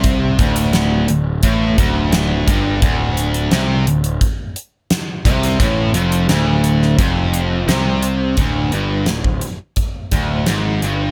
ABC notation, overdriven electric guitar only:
X:1
M:4/4
L:1/8
Q:1/4=86
K:Clyd
V:1 name="Overdriven electric guitar" clef=bass
C, D,,2 D,, A,, D,,2 G,, | D,,2 C, D,, z3 C, | A,, =F,, D,,2 F,,2 C,2 | D,, G,, D,, z2 D,, ^G,, =G,, |]